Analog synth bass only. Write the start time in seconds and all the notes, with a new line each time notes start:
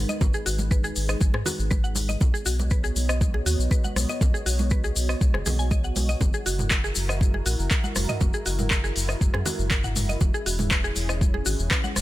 0.21 G#1
0.46 G#1
0.97 G#1
1.21 G#1
1.34 G#2
1.59 G#1
2.21 B1
2.46 B1
2.96 B1
3.46 D#2
3.59 B1
3.96 B1
4.21 B1
4.46 B1
4.96 B1
5.21 B1
5.34 F#1
5.46 B1
5.96 B1
6.21 F#1
6.46 F#1
6.96 F#1
7.46 A#1
7.59 F#1
7.96 F#1
8.21 F#1
8.46 F#1
8.96 F#1
9.21 F#1
9.34 F#2
9.59 F#1
10.21 E1
10.46 E1
10.96 E1
11.46 G#1
11.59 E1
11.96 E1